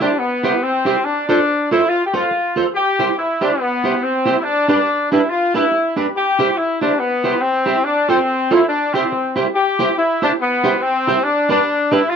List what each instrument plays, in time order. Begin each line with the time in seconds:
0.00 horn section D4, clean electric guitar E4 G4 C5
0.18 horn section B3
0.43 clean electric guitar E4 G4 C5
0.62 horn section C4
0.85 clean electric guitar E4 G4 C5
1.04 horn section D4
1.28 horn section D4, clean electric guitar F4 A4 C5
1.71 horn section E4, clean electric guitar F4 A4 C5
1.89 horn section F4
2.06 horn section G4
2.13 clean electric guitar F4 A4 C5, horn section F4
2.31 muted clean electric guitar stroke
2.56 clean electric guitar F4 A4 C5
2.75 horn section G4
2.99 clean electric guitar E4 G4 C5
3.18 horn section E4
3.41 horn section D4, clean electric guitar E4 G4 C5
3.60 horn section B3
3.84 clean electric guitar E4 G4 C5
4.03 horn section C4
4.25 clean electric guitar E4 G4 C5
4.39 horn section E4
4.44 horn section D4
4.68 clean electric guitar D4 G4 B4, horn section D4
5.12 clean electric guitar D4 G4 B4, horn section E4
5.30 horn section F4
5.54 clean electric guitar D4 G4 B4, horn section E4
5.71 muted clean electric guitar stroke
5.96 clean electric guitar D4 G4 B4
6.16 horn section G4
6.39 clean electric guitar E4 G4 C5
6.57 horn section E4
6.81 horn section D4, clean electric guitar E4 G4 C5
6.99 horn section B3
7.24 clean electric guitar E4 G4 C5
7.42 horn section C4
7.66 clean electric guitar E4 G4 C5
7.84 horn section D4
8.09 horn section C4, clean electric guitar F4 A4 C5
8.51 horn section E4, clean electric guitar F4 A4 C5
8.69 horn section D4
8.93 horn section C4, clean electric guitar E4 G4 C5
9.12 muted clean electric guitar stroke
9.36 clean electric guitar E4 G4 C5
9.55 horn section G4
9.79 clean electric guitar E4 G4 C5
9.97 horn section E4
10.22 horn section D4, clean electric guitar E4 G4 C5
10.41 horn section B3
10.63 clean electric guitar E4 G4 C5
10.82 horn section C4
11.07 clean electric guitar E4 G4 C5
11.24 horn section D4
11.49 clean electric guitar D4 G4 B4, horn section D4
11.91 clean electric guitar D4 G4 B4, horn section E4
12.09 horn section F4